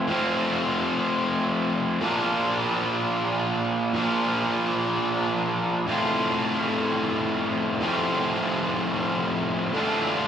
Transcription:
0.00 0.11 F4 medium
0.07 2.01 F3 medium
0.07 2.02 A3 medium
0.07 2.01 C4 medium
0.07 2.03 F4 medium
2.00 3.92 A#2 medium
2.00 3.94 F3 medium
2.00 3.93 A#3 medium
2.00 3.94 D4 medium
2.00 3.97 F4 medium
3.93 5.86 A#2 medium
3.93 5.88 F3 medium
3.93 5.87 A#3 medium
3.93 5.87 D4 medium
3.93 5.90 F4 medium
5.87 7.79 A2 medium
5.87 7.81 F3 medium
5.87 7.82 A3 medium
5.87 7.83 C4 medium
5.87 7.84 F4 medium
7.80 9.72 A2 medium
7.80 9.73 F3 medium
7.80 9.75 A3 medium
7.80 9.76 C4 medium
7.80 9.77 F4 medium
9.73 10.28 D3 medium
9.73 10.28 A3 medium
9.73 10.28 D4 medium
9.73 10.28 F4 medium

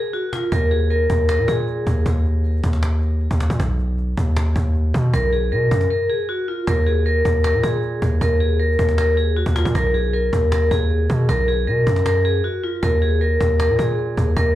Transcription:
0.00 0.12 G#4 medium
0.13 0.31 F#4 medium
0.13 cajon slap soft
0.33 0.50 F4 medium
0.33 cajon slap loud
0.52 1.07 D#2 loud
0.52 0.69 A#4 medium
0.52 cajon bass loud
0.71 0.89 G#4 medium
0.71 cajon slap soft
0.90 1.27 A#4 medium
0.90 cajon slap soft
1.10 1.40 D#2 loud
1.10 cajon bass loud
1.29 1.46 A#4 medium
1.29 cajon slap loud
1.38 1.47 A#2 loud
1.48 1.85 A#2 loud
1.48 2.02 G#4 medium
1.48 cajon bass loud
1.67 cajon slap soft
1.87 2.05 D#2 loud
1.87 cajon bass medium
2.06 2.61 D#2 loud
2.06 cajon bass loud
2.25 cajon slap soft
2.44 cajon slap soft
2.51 cajon slap soft
2.57 cajon slap soft
2.64 3.28 D#2 loud
2.64 cajon bass loud
2.70 cajon slap soft
2.73 cajon slap medium
2.76 cajon slap soft
2.83 cajon slap loud
3.02 cajon slap soft
3.21 cajon slap soft
3.31 3.49 D#2 loud
3.31 cajon bass medium
3.40 cajon slap loud
3.50 3.59 A#2 loud
3.50 cajon bass medium
3.60 4.15 B1 loud
3.60 cajon bass loud
3.79 cajon slap soft
3.98 cajon slap soft
4.17 4.54 D#2 loud
4.17 cajon bass loud
4.37 cajon slap loud
4.56 4.93 D#2 loud
4.56 cajon bass loud
4.75 cajon slap soft
4.94 5.13 B2 loud
4.94 cajon bass medium
5.13 5.53 B1 loud
5.13 5.31 A#4 loud
5.13 cajon bass loud
5.33 5.50 G#4 medium
5.33 cajon slap soft
5.52 5.70 B2 loud
5.52 5.88 A#4 medium
5.52 cajon slap soft
5.71 5.90 F#2 loud
5.71 cajon bass loud
5.81 cajon slap medium
5.90 6.08 A#4 medium
6.10 6.27 G#4 medium
6.29 6.46 F#4 medium
6.48 6.66 F4 medium
6.67 7.23 D#2 loud
6.67 6.85 A#4 medium
6.67 cajon bass loud
6.87 7.04 G#4 medium
6.87 cajon slap soft
7.06 7.42 A#4 medium
7.06 cajon slap soft
7.25 7.55 D#2 loud
7.25 cajon bass loud
7.44 7.62 A#4 medium
7.44 cajon slap loud
7.54 7.63 A#2 loud
7.63 8.00 A#2 loud
7.63 8.18 G#4 medium
7.63 cajon bass loud
7.83 cajon slap soft
8.02 8.20 D#2 loud
8.02 cajon bass medium
8.21 8.77 D#2 loud
8.21 8.39 A#4 loud
8.21 cajon bass loud
8.40 8.58 G#4 medium
8.40 cajon slap soft
8.60 8.96 A#4 medium
8.60 cajon slap soft
8.66 cajon slap soft
8.72 cajon slap soft
8.79 9.44 D#2 loud
8.79 cajon bass loud
8.85 cajon slap soft
8.88 cajon slap medium
8.92 cajon slap soft
8.98 9.16 A#4 medium
8.98 cajon slap loud
9.17 9.35 G#4 medium
9.17 cajon slap soft
9.36 9.54 F#4 medium
9.36 cajon slap soft
9.46 9.65 D#2 loud
9.46 cajon bass medium
9.56 9.73 F4 medium
9.56 cajon slap medium
9.65 9.74 A#2 loud
9.65 cajon bass medium
9.75 10.30 B1 loud
9.75 9.93 A#4 medium
9.75 cajon bass loud
9.94 10.12 G#4 medium
9.94 cajon slap soft
10.13 10.50 A#4 medium
10.13 cajon slap soft
10.33 10.70 D#2 loud
10.33 cajon bass loud
10.52 10.69 A#4 medium
10.52 cajon slap loud
10.71 11.08 D#2 loud
10.71 11.25 G#4 medium
10.71 cajon bass loud
10.90 cajon slap soft
11.10 11.28 B2 loud
11.10 cajon bass medium
11.29 11.69 B1 loud
11.29 11.46 A#4 loud
11.29 cajon bass loud
11.48 11.66 G#4 medium
11.48 cajon slap soft
11.67 11.86 B2 loud
11.67 12.04 A#4 medium
11.67 cajon slap soft
11.87 12.42 F#2 loud
11.87 cajon bass loud
11.96 cajon slap medium
12.06 12.23 A#4 medium
12.06 cajon slap loud
12.25 12.43 G#4 medium
12.25 cajon slap soft
12.44 12.62 F#4 medium
12.63 12.81 F4 medium
12.83 13.38 D#2 loud
12.83 13.00 A#4 medium
12.83 cajon bass loud
13.02 13.19 G#4 medium
13.02 cajon slap soft
13.21 13.57 A#4 medium
13.21 cajon slap soft
13.41 13.71 D#2 loud
13.41 cajon bass loud
13.60 13.77 A#4 medium
13.60 cajon slap loud
13.69 13.78 A#2 loud
13.79 14.16 A#2 loud
13.79 14.33 G#4 medium
13.79 cajon bass loud
13.98 cajon slap soft
14.17 14.36 D#2 loud
14.17 cajon bass medium
14.37 14.55 D#2 loud
14.37 14.54 A#4 loud
14.37 cajon bass loud

